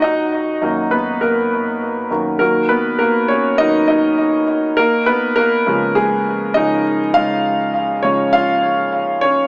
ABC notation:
X:1
M:4/4
L:1/16
Q:"Swing 16ths" 1/4=101
K:C#mix
V:1 name="Grand piano"
[Dd]6 [B,B]2 [A,A]6 z2 | A2 [B,B]2 [A,A]2 [Cc]2 [Dd]2 [Dd]4 z2 | [A,A]2 [B,B]2 [A,A]4 [G,G]4 [Dd]3 z | [Ee]6 [Cc]2 [Ee]6 [Cc]2 |]
V:2 name="Grand piano" clef=bass
z4 [F,,D,A,]8- [F,,D,A,]2 [F,,D,A,]2 | [D,F,A,]6 z2 [D,F,A,]2 z6 | z6 [C,E,G,]6 [C,E,G,]2 z2 | [C,E,G,]2 z4 [C,E,G,]2 z8 |]